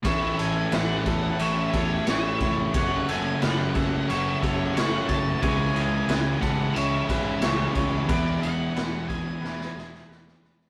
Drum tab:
RD |x-x-x-x-x-x-x-x-|x-x-x-x-x-x-x-x-|x-x-x-x-x-x-x-x-|x-x-x-x---------|
SD |----o-------o---|----o-------o---|----o-------o---|----o---oooooooo|
BD |o-----o---o---o-|o-----o---o---o-|o-----o---o---o-|o-----o---------|